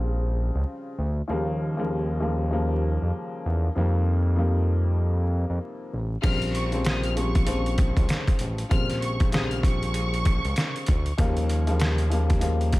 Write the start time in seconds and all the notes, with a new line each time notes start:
Already playing: A#1 C#3 F3 G3 C4
0.55 C#2
0.98 D2
1.28 D#2 C#3 F3 G3 A#3
1.77 D#2 C#3 F3 G3 A#3
2.20 D#2 C#3 F3 G3 A#3
2.51 D#2 C#3 F3 G3 A#3
3.02 F2
3.45 E2
3.75 F2 C3 D#3 G3 A#3
4.36 F2 C3 D#3 G3 A#3
5.50 F2
5.93 A1
6.22 A#1 C#3 F3 G3 C4 F6, kick, closed hi-hat, crash
6.42 closed hi-hat
6.54 C#6, closed hi-hat
6.72 C#3 F3 G3 C4, closed hi-hat
6.85 D#6, snare, closed hi-hat
7.03 F6, closed hi-hat
7.15 C#3 F3 G3 C4 C#6, closed hi-hat
7.35 kick, closed hi-hat
7.46 C#3 F3 G3 C4, closed hi-hat
7.66 closed hi-hat
7.78 kick, closed hi-hat
7.97 C#2, kick, closed hi-hat
8.09 snare, closed hi-hat
8.28 kick, closed hi-hat
8.39 A1, closed hi-hat
8.58 closed hi-hat
8.69 A#1 C#3 F3 G3 C4 F6, kick, closed hi-hat
8.90 snare, closed hi-hat
9.01 C#6, closed hi-hat
9.20 kick, closed hi-hat
9.32 C#3 F3 G3 C4 D#6, snare, closed hi-hat
9.50 F6, closed hi-hat
9.63 C#6, kick, closed hi-hat
9.83 closed hi-hat
9.94 closed hi-hat
10.14 closed hi-hat
10.25 kick, closed hi-hat
10.45 C#2, closed hi-hat
10.56 snare, closed hi-hat
10.76 closed hi-hat
10.86 D2, kick, closed hi-hat
11.06 closed hi-hat
11.17 D#2 C#3 F3 G3 A#3, kick, closed hi-hat
11.37 closed hi-hat
11.49 closed hi-hat
11.67 D#2 C#3 F3 G3 A#3, closed hi-hat
11.80 snare, closed hi-hat
11.98 closed hi-hat
12.10 D#2 C#3 F3 G3 A#3, closed hi-hat
12.30 kick, closed hi-hat
12.40 D#2 C#3 F3 G3 A#3, closed hi-hat
12.61 closed hi-hat
12.73 kick, closed hi-hat